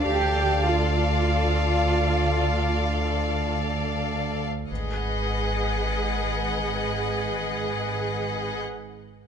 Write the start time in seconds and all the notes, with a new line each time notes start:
Already playing: C5 B5 C6
0.05 D2 G4 A4 D5 F5
0.63 F4
4.70 G#1 G#4 B4 D#5 F#5